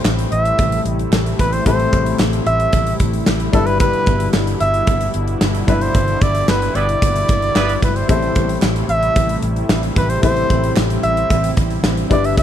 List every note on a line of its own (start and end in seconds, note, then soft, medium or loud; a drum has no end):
0.00 0.28 A2 medium
0.00 3.50 C3 medium
0.00 12.43 G3 medium
0.00 3.50 A3 medium
0.00 1.62 C4 medium
0.00 1.62 E4 medium
0.00 12.43 E4 medium
0.00 1.62 G4 medium
0.00 1.62 A4 medium
0.00 1.63 E5 medium
0.04 0.24 A1 loud
0.04 snare loud
0.04 clap medium
0.04 tambourine medium
0.19 closed hi-hat medium
0.32 0.51 A1 loud
0.32 0.82 E5 loud
0.32 closed hi-hat medium
0.45 closed hi-hat medium
0.59 0.78 A1 loud
0.59 kick loud
0.59 closed hi-hat medium
0.72 closed hi-hat medium
0.85 1.05 A1 loud
0.85 closed hi-hat medium
0.99 closed hi-hat medium
1.11 1.31 A1 loud
1.11 snare loud
1.11 clap medium
1.11 tambourine medium
1.26 closed hi-hat medium
1.39 1.59 A1 loud
1.39 1.54 B4 loud
1.39 kick loud
1.39 closed hi-hat medium
1.53 1.66 C5 loud
1.53 closed hi-hat medium
1.65 1.85 A1 loud
1.65 2.43 A2 medium
1.65 3.49 C4 medium
1.65 3.50 E4 medium
1.65 3.50 G4 medium
1.65 3.50 A4 medium
1.65 2.16 C5 loud
1.65 3.51 E5 medium
1.65 kick loud
1.65 closed hi-hat medium
1.80 closed hi-hat soft
1.93 2.12 A1 loud
1.93 kick loud
1.93 closed hi-hat medium
2.06 closed hi-hat medium
2.19 2.39 A1 loud
2.19 snare loud
2.19 clap medium
2.19 tambourine medium
2.33 closed hi-hat medium
2.46 2.66 A1 loud
2.46 2.96 E5 loud
2.46 closed hi-hat medium
2.60 closed hi-hat medium
2.73 2.92 A1 loud
2.73 kick loud
2.73 closed hi-hat medium
2.87 closed hi-hat medium
3.00 3.19 A1 loud
3.00 kick loud
3.00 closed hi-hat medium
3.13 closed hi-hat medium
3.26 3.46 A1 loud
3.26 snare loud
3.26 clap medium
3.26 tambourine medium
3.40 closed hi-hat medium
3.52 3.92 G1 loud
3.52 4.30 G2 medium
3.52 8.05 B2 medium
3.52 8.05 D3 medium
3.52 5.63 D4 medium
3.52 5.64 E4 medium
3.52 5.64 G4 medium
3.52 3.68 A4 loud
3.52 5.64 B4 medium
3.52 5.64 E5 medium
3.52 kick loud
3.52 closed hi-hat medium
3.66 3.79 B4 loud
3.66 closed hi-hat medium
3.80 4.30 B4 loud
3.80 kick loud
3.80 closed hi-hat medium
3.93 closed hi-hat soft
4.06 4.26 G1 loud
4.06 kick loud
4.06 closed hi-hat medium
4.20 closed hi-hat medium
4.33 4.53 G1 loud
4.33 snare loud
4.33 clap medium
4.33 tambourine medium
4.47 closed hi-hat medium
4.60 4.80 G1 loud
4.60 5.11 E5 loud
4.60 closed hi-hat medium
4.74 closed hi-hat medium
4.87 5.07 G1 loud
4.87 kick loud
4.87 closed hi-hat medium
5.01 closed hi-hat medium
5.14 5.34 G1 loud
5.14 closed hi-hat medium
5.28 closed hi-hat medium
5.41 5.61 G1 loud
5.41 snare loud
5.41 clap medium
5.41 tambourine medium
5.55 closed hi-hat medium
5.67 5.87 G1 loud
5.67 6.45 G2 medium
5.67 7.78 D4 medium
5.67 7.78 E4 medium
5.67 7.78 G4 medium
5.67 5.83 B4 loud
5.67 7.79 E5 medium
5.67 7.79 B5 medium
5.67 kick loud
5.67 closed hi-hat medium
5.81 6.24 C5 loud
5.81 closed hi-hat medium
5.95 6.14 G1 loud
5.95 kick loud
5.95 closed hi-hat medium
6.08 closed hi-hat soft
6.21 6.41 G1 loud
6.21 6.50 D5 loud
6.21 kick loud
6.21 closed hi-hat medium
6.35 closed hi-hat medium
6.48 6.67 G1 loud
6.48 6.77 B4 loud
6.48 snare loud
6.48 clap medium
6.48 tambourine medium
6.62 closed hi-hat medium
6.75 6.94 G1 loud
6.75 6.87 G3 medium
6.75 6.87 B3 medium
6.75 6.87 E4 medium
6.75 6.87 B4 medium
6.75 7.83 D5 loud
6.75 closed hi-hat medium
6.89 closed hi-hat medium
7.02 7.21 G1 loud
7.02 kick loud
7.02 closed hi-hat medium
7.16 closed hi-hat medium
7.29 7.48 G1 medium
7.29 kick loud
7.29 closed hi-hat medium
7.42 closed hi-hat medium
7.55 7.75 G1 loud
7.55 7.73 G3 loud
7.55 7.73 B3 loud
7.55 7.73 E4 medium
7.55 7.73 B4 loud
7.55 snare loud
7.55 clap medium
7.55 tambourine medium
7.69 closed hi-hat medium
7.82 8.02 G1 loud
7.82 7.98 B4 medium
7.82 kick loud
7.82 closed hi-hat medium
7.96 8.09 C5 medium
7.96 closed hi-hat medium
8.08 8.28 A1 loud
8.08 8.85 A2 medium
8.08 12.07 C3 medium
8.08 10.21 A3 medium
8.08 10.19 C4 medium
8.08 10.19 E4 medium
8.08 10.19 G4 medium
8.08 10.20 A4 medium
8.08 8.59 C5 medium
8.08 10.20 E5 medium
8.08 kick loud
8.08 closed hi-hat medium
8.23 closed hi-hat soft
8.35 8.55 A1 loud
8.35 kick loud
8.35 closed hi-hat medium
8.49 closed hi-hat medium
8.62 8.81 A1 loud
8.62 snare loud
8.62 clap medium
8.62 tambourine medium
8.76 closed hi-hat medium
8.89 9.08 A1 loud
8.89 9.40 E5 loud
8.89 closed hi-hat medium
9.03 closed hi-hat medium
9.16 9.35 A1 loud
9.16 kick loud
9.16 closed hi-hat medium
9.29 closed hi-hat medium
9.42 9.62 A1 loud
9.42 closed hi-hat medium
9.56 closed hi-hat medium
9.69 9.89 A1 loud
9.69 snare loud
9.69 clap medium
9.69 tambourine medium
9.83 closed hi-hat medium
9.96 10.15 A1 loud
9.96 10.11 B4 loud
9.96 kick loud
9.96 closed hi-hat medium
10.10 10.23 C5 loud
10.10 closed hi-hat medium
10.22 10.42 A1 loud
10.22 10.99 A2 medium
10.22 12.06 C4 medium
10.22 12.09 C4 medium
10.22 12.07 E4 medium
10.22 12.07 G4 medium
10.22 12.07 A4 medium
10.22 10.73 C5 loud
10.22 12.08 E5 medium
10.22 kick loud
10.22 closed hi-hat medium
10.36 closed hi-hat soft
10.50 10.69 A1 loud
10.50 kick loud
10.50 closed hi-hat medium
10.64 closed hi-hat medium
10.76 10.96 A1 loud
10.76 snare loud
10.76 clap medium
10.76 tambourine medium
10.90 closed hi-hat medium
11.03 11.23 A1 loud
11.03 11.53 E5 loud
11.03 closed hi-hat medium
11.17 closed hi-hat medium
11.30 11.50 A1 loud
11.30 kick loud
11.30 closed hi-hat medium
11.44 closed hi-hat medium
11.57 11.77 A1 loud
11.57 kick loud
11.57 closed hi-hat medium
11.70 closed hi-hat medium
11.83 12.03 A1 loud
11.83 snare loud
11.83 clap medium
11.83 tambourine medium
11.97 closed hi-hat medium
12.10 12.43 G1 loud
12.10 12.43 G2 medium
12.10 12.43 D3 medium
12.10 12.43 B3 medium
12.10 12.43 D4 medium
12.10 12.43 E4 medium
12.10 12.43 G4 medium
12.10 12.43 B4 medium
12.10 12.27 D5 loud
12.10 12.43 E5 medium
12.10 kick loud
12.10 closed hi-hat medium
12.24 12.38 E5 loud
12.24 closed hi-hat medium
12.37 12.43 E5 loud
12.37 kick loud
12.37 closed hi-hat medium